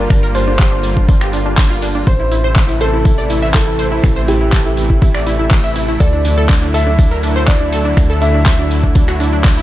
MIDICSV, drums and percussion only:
0, 0, Header, 1, 2, 480
1, 0, Start_track
1, 0, Tempo, 491803
1, 101, Time_signature, 4, 2, 24, 8
1, 9391, End_track
2, 0, Start_track
2, 0, Title_t, "Drums"
2, 100, Note_on_c, 9, 36, 123
2, 101, Note_on_c, 9, 26, 63
2, 102, Note_on_c, 9, 54, 86
2, 198, Note_off_c, 9, 36, 0
2, 199, Note_off_c, 9, 26, 0
2, 200, Note_off_c, 9, 54, 0
2, 224, Note_on_c, 9, 42, 44
2, 321, Note_off_c, 9, 42, 0
2, 338, Note_on_c, 9, 54, 68
2, 341, Note_on_c, 9, 46, 113
2, 435, Note_off_c, 9, 54, 0
2, 439, Note_off_c, 9, 46, 0
2, 577, Note_on_c, 9, 39, 127
2, 578, Note_on_c, 9, 38, 108
2, 580, Note_on_c, 9, 36, 119
2, 582, Note_on_c, 9, 54, 80
2, 675, Note_off_c, 9, 39, 0
2, 676, Note_off_c, 9, 38, 0
2, 678, Note_off_c, 9, 36, 0
2, 680, Note_off_c, 9, 54, 0
2, 813, Note_on_c, 9, 54, 68
2, 821, Note_on_c, 9, 46, 108
2, 911, Note_off_c, 9, 54, 0
2, 918, Note_off_c, 9, 46, 0
2, 943, Note_on_c, 9, 36, 65
2, 1041, Note_off_c, 9, 36, 0
2, 1060, Note_on_c, 9, 36, 119
2, 1061, Note_on_c, 9, 54, 93
2, 1158, Note_off_c, 9, 36, 0
2, 1159, Note_off_c, 9, 54, 0
2, 1182, Note_on_c, 9, 38, 53
2, 1183, Note_on_c, 9, 26, 64
2, 1280, Note_off_c, 9, 38, 0
2, 1281, Note_off_c, 9, 26, 0
2, 1297, Note_on_c, 9, 54, 59
2, 1301, Note_on_c, 9, 46, 106
2, 1394, Note_off_c, 9, 54, 0
2, 1399, Note_off_c, 9, 46, 0
2, 1537, Note_on_c, 9, 39, 122
2, 1541, Note_on_c, 9, 36, 125
2, 1541, Note_on_c, 9, 38, 126
2, 1541, Note_on_c, 9, 46, 85
2, 1635, Note_off_c, 9, 39, 0
2, 1638, Note_off_c, 9, 36, 0
2, 1639, Note_off_c, 9, 38, 0
2, 1639, Note_off_c, 9, 46, 0
2, 1778, Note_on_c, 9, 54, 70
2, 1781, Note_on_c, 9, 46, 118
2, 1876, Note_off_c, 9, 54, 0
2, 1878, Note_off_c, 9, 46, 0
2, 2021, Note_on_c, 9, 36, 125
2, 2023, Note_on_c, 9, 54, 90
2, 2118, Note_off_c, 9, 36, 0
2, 2121, Note_off_c, 9, 54, 0
2, 2260, Note_on_c, 9, 46, 115
2, 2261, Note_on_c, 9, 54, 72
2, 2358, Note_off_c, 9, 46, 0
2, 2359, Note_off_c, 9, 54, 0
2, 2497, Note_on_c, 9, 39, 123
2, 2501, Note_on_c, 9, 36, 127
2, 2502, Note_on_c, 9, 38, 105
2, 2503, Note_on_c, 9, 54, 90
2, 2594, Note_off_c, 9, 39, 0
2, 2598, Note_off_c, 9, 36, 0
2, 2599, Note_off_c, 9, 38, 0
2, 2601, Note_off_c, 9, 54, 0
2, 2623, Note_on_c, 9, 46, 66
2, 2624, Note_on_c, 9, 38, 56
2, 2721, Note_off_c, 9, 46, 0
2, 2722, Note_off_c, 9, 38, 0
2, 2740, Note_on_c, 9, 54, 65
2, 2741, Note_on_c, 9, 46, 110
2, 2837, Note_off_c, 9, 54, 0
2, 2838, Note_off_c, 9, 46, 0
2, 2978, Note_on_c, 9, 54, 91
2, 2980, Note_on_c, 9, 36, 125
2, 3075, Note_off_c, 9, 54, 0
2, 3078, Note_off_c, 9, 36, 0
2, 3103, Note_on_c, 9, 42, 43
2, 3200, Note_off_c, 9, 42, 0
2, 3220, Note_on_c, 9, 46, 117
2, 3223, Note_on_c, 9, 54, 70
2, 3318, Note_off_c, 9, 46, 0
2, 3321, Note_off_c, 9, 54, 0
2, 3351, Note_on_c, 9, 38, 40
2, 3449, Note_off_c, 9, 38, 0
2, 3456, Note_on_c, 9, 39, 122
2, 3460, Note_on_c, 9, 36, 127
2, 3460, Note_on_c, 9, 54, 98
2, 3465, Note_on_c, 9, 38, 120
2, 3554, Note_off_c, 9, 39, 0
2, 3558, Note_off_c, 9, 36, 0
2, 3558, Note_off_c, 9, 54, 0
2, 3563, Note_off_c, 9, 38, 0
2, 3697, Note_on_c, 9, 54, 63
2, 3700, Note_on_c, 9, 46, 117
2, 3795, Note_off_c, 9, 54, 0
2, 3797, Note_off_c, 9, 46, 0
2, 3940, Note_on_c, 9, 26, 58
2, 3940, Note_on_c, 9, 36, 120
2, 3945, Note_on_c, 9, 54, 95
2, 4038, Note_off_c, 9, 26, 0
2, 4038, Note_off_c, 9, 36, 0
2, 4043, Note_off_c, 9, 54, 0
2, 4063, Note_on_c, 9, 42, 47
2, 4160, Note_off_c, 9, 42, 0
2, 4179, Note_on_c, 9, 54, 65
2, 4180, Note_on_c, 9, 46, 112
2, 4277, Note_off_c, 9, 46, 0
2, 4277, Note_off_c, 9, 54, 0
2, 4416, Note_on_c, 9, 39, 116
2, 4420, Note_on_c, 9, 36, 119
2, 4424, Note_on_c, 9, 38, 120
2, 4426, Note_on_c, 9, 54, 81
2, 4514, Note_off_c, 9, 39, 0
2, 4518, Note_off_c, 9, 36, 0
2, 4522, Note_off_c, 9, 38, 0
2, 4523, Note_off_c, 9, 54, 0
2, 4657, Note_on_c, 9, 54, 68
2, 4660, Note_on_c, 9, 46, 112
2, 4754, Note_off_c, 9, 54, 0
2, 4757, Note_off_c, 9, 46, 0
2, 4783, Note_on_c, 9, 36, 62
2, 4880, Note_off_c, 9, 36, 0
2, 4900, Note_on_c, 9, 36, 119
2, 4900, Note_on_c, 9, 54, 89
2, 4998, Note_off_c, 9, 36, 0
2, 4998, Note_off_c, 9, 54, 0
2, 5022, Note_on_c, 9, 26, 60
2, 5025, Note_on_c, 9, 38, 59
2, 5120, Note_off_c, 9, 26, 0
2, 5123, Note_off_c, 9, 38, 0
2, 5140, Note_on_c, 9, 46, 113
2, 5143, Note_on_c, 9, 54, 67
2, 5237, Note_off_c, 9, 46, 0
2, 5240, Note_off_c, 9, 54, 0
2, 5376, Note_on_c, 9, 39, 116
2, 5378, Note_on_c, 9, 46, 90
2, 5380, Note_on_c, 9, 36, 127
2, 5384, Note_on_c, 9, 38, 119
2, 5473, Note_off_c, 9, 39, 0
2, 5476, Note_off_c, 9, 46, 0
2, 5477, Note_off_c, 9, 36, 0
2, 5481, Note_off_c, 9, 38, 0
2, 5617, Note_on_c, 9, 54, 71
2, 5620, Note_on_c, 9, 46, 113
2, 5714, Note_off_c, 9, 54, 0
2, 5717, Note_off_c, 9, 46, 0
2, 5860, Note_on_c, 9, 36, 114
2, 5860, Note_on_c, 9, 54, 80
2, 5957, Note_off_c, 9, 36, 0
2, 5958, Note_off_c, 9, 54, 0
2, 6096, Note_on_c, 9, 54, 74
2, 6100, Note_on_c, 9, 46, 105
2, 6194, Note_off_c, 9, 54, 0
2, 6198, Note_off_c, 9, 46, 0
2, 6336, Note_on_c, 9, 39, 116
2, 6338, Note_on_c, 9, 54, 90
2, 6340, Note_on_c, 9, 36, 118
2, 6343, Note_on_c, 9, 38, 114
2, 6434, Note_off_c, 9, 39, 0
2, 6435, Note_off_c, 9, 54, 0
2, 6437, Note_off_c, 9, 36, 0
2, 6441, Note_off_c, 9, 38, 0
2, 6460, Note_on_c, 9, 38, 58
2, 6463, Note_on_c, 9, 46, 61
2, 6558, Note_off_c, 9, 38, 0
2, 6561, Note_off_c, 9, 46, 0
2, 6580, Note_on_c, 9, 46, 103
2, 6581, Note_on_c, 9, 54, 66
2, 6678, Note_off_c, 9, 46, 0
2, 6679, Note_off_c, 9, 54, 0
2, 6820, Note_on_c, 9, 36, 117
2, 6823, Note_on_c, 9, 54, 85
2, 6918, Note_off_c, 9, 36, 0
2, 6920, Note_off_c, 9, 54, 0
2, 6946, Note_on_c, 9, 42, 43
2, 7044, Note_off_c, 9, 42, 0
2, 7059, Note_on_c, 9, 54, 64
2, 7060, Note_on_c, 9, 46, 108
2, 7157, Note_off_c, 9, 54, 0
2, 7158, Note_off_c, 9, 46, 0
2, 7177, Note_on_c, 9, 38, 46
2, 7274, Note_off_c, 9, 38, 0
2, 7296, Note_on_c, 9, 39, 113
2, 7298, Note_on_c, 9, 38, 126
2, 7300, Note_on_c, 9, 36, 123
2, 7302, Note_on_c, 9, 54, 90
2, 7394, Note_off_c, 9, 39, 0
2, 7395, Note_off_c, 9, 38, 0
2, 7397, Note_off_c, 9, 36, 0
2, 7400, Note_off_c, 9, 54, 0
2, 7540, Note_on_c, 9, 46, 112
2, 7541, Note_on_c, 9, 54, 67
2, 7638, Note_off_c, 9, 46, 0
2, 7639, Note_off_c, 9, 54, 0
2, 7779, Note_on_c, 9, 54, 90
2, 7780, Note_on_c, 9, 26, 60
2, 7780, Note_on_c, 9, 36, 115
2, 7876, Note_off_c, 9, 54, 0
2, 7878, Note_off_c, 9, 26, 0
2, 7878, Note_off_c, 9, 36, 0
2, 7906, Note_on_c, 9, 42, 39
2, 8003, Note_off_c, 9, 42, 0
2, 8018, Note_on_c, 9, 54, 72
2, 8020, Note_on_c, 9, 46, 105
2, 8115, Note_off_c, 9, 54, 0
2, 8118, Note_off_c, 9, 46, 0
2, 8256, Note_on_c, 9, 39, 115
2, 8259, Note_on_c, 9, 38, 116
2, 8260, Note_on_c, 9, 36, 115
2, 8263, Note_on_c, 9, 54, 87
2, 8354, Note_off_c, 9, 39, 0
2, 8356, Note_off_c, 9, 38, 0
2, 8358, Note_off_c, 9, 36, 0
2, 8360, Note_off_c, 9, 54, 0
2, 8500, Note_on_c, 9, 46, 106
2, 8503, Note_on_c, 9, 54, 66
2, 8598, Note_off_c, 9, 46, 0
2, 8600, Note_off_c, 9, 54, 0
2, 8623, Note_on_c, 9, 36, 61
2, 8720, Note_off_c, 9, 36, 0
2, 8737, Note_on_c, 9, 54, 85
2, 8740, Note_on_c, 9, 36, 107
2, 8834, Note_off_c, 9, 54, 0
2, 8838, Note_off_c, 9, 36, 0
2, 8863, Note_on_c, 9, 26, 65
2, 8866, Note_on_c, 9, 38, 56
2, 8961, Note_off_c, 9, 26, 0
2, 8964, Note_off_c, 9, 38, 0
2, 8981, Note_on_c, 9, 46, 106
2, 8988, Note_on_c, 9, 54, 62
2, 9078, Note_off_c, 9, 46, 0
2, 9085, Note_off_c, 9, 54, 0
2, 9216, Note_on_c, 9, 39, 115
2, 9216, Note_on_c, 9, 46, 79
2, 9220, Note_on_c, 9, 36, 124
2, 9221, Note_on_c, 9, 38, 124
2, 9313, Note_off_c, 9, 46, 0
2, 9314, Note_off_c, 9, 39, 0
2, 9318, Note_off_c, 9, 36, 0
2, 9319, Note_off_c, 9, 38, 0
2, 9391, End_track
0, 0, End_of_file